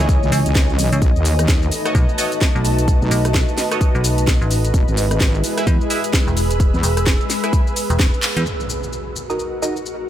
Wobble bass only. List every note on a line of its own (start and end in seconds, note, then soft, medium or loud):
0.00 0.20 C#2 loud
0.23 0.31 C#2 loud
0.46 0.90 C#2 loud
1.02 1.14 B1 loud
1.16 1.47 D#2 loud
1.48 1.70 D#2 medium
3.02 3.10 B1 loud
4.74 4.86 E1 medium
4.88 5.19 G#1 medium
5.20 5.42 G#1 loud
6.74 6.82 E2 loud